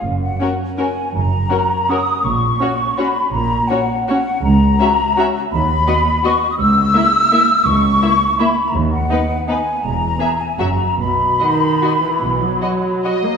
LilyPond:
<<
  \new Staff \with { instrumentName = "Flute section" } { \time 3/4 \key fis \major \tempo 4 = 162 r8 fis''4. gis''4 | ais''2 dis'''4 | cis'''2 b''4 | ais''4 fis''4 fis''4 |
\key b \major ais''2. | b''2 cis'''8. dis'''16 | e'''2. | cis'''2 b''8. ais''16 |
r8 fis''4. gis''4 | ais''4. gis''8 ais''4 | b''2.~ | b''2 r4 | }
  \new Staff \with { instrumentName = "Violin section" } { \time 3/4 \key fis \major r4 ais'4 ais'4 | r4 ais'4 ais'4 | r4 cis''4 cis''4 | r4 cis''4 cis''4 |
\key b \major r4 e''4 e''4 | r4 dis''4 dis''4 | r4 e''4 e''4 | r4 e''4 e''4 |
r4 b'4 b'4 | r4 e''4 e''4 | r4 dis''4 dis''4 | r4 dis''4 dis''4 | }
  \new Staff \with { instrumentName = "Violin section" } { \time 3/4 \key fis \major r4 fis'4 fis'4 | r4 fis'4 fis'4 | r4 fis'4 fis'4 | r4 fis'4 fis'4 |
\key b \major r4 fis'4 fis'4 | r4 fis'4 fis'4 | r4 e'4 e'4 | r4 e'4 e'4 |
r4 dis'4 dis'4 | r4 gis'4 fis'4 | r4 fis'4 fis'4 | r4 fis'4 fis'4 | }
  \new Staff \with { instrumentName = "Viola section" } { \time 3/4 \key fis \major r4 cis'4 cis'4 | r4 cis'4 cis'4 | r4 cis'4 cis'4 | r4 cis'4 cis'4 |
\key b \major r4 cis'4 cis'4 | r4 b4 b4 | r4 ais4 ais4 | r4 ais4 ais4 |
r4 b4 b4 | r4 b4 fis4 | r4 dis4. e8~ | e8 fis2 ais8 | }
  \new Staff \with { instrumentName = "Cello section" } { \clef bass \time 3/4 \key fis \major fis,4 r2 | fis,4 r2 | ais,4 r2 | ais,4 r2 |
\key b \major cis,4 r2 | dis,4 r2 | cis,4 r2 | cis,4 r2 |
dis,4 r2 | e,4 r4 fis,4 | b,4 r2 | b,4 r2 | }
  \new Staff \with { instrumentName = "Double bass section" } { \clef bass \time 3/4 \key fis \major fis,,4 r2 | fis,,4 r2 | ais,,4 r2 | ais,,4 r2 |
\key b \major cis,4 r2 | dis,4 r2 | cis,4 r2 | cis,4 r2 |
dis,4 r2 | e,,4 r4 fis,,4 | b,,4 r2 | b,,4 r2 | }
>>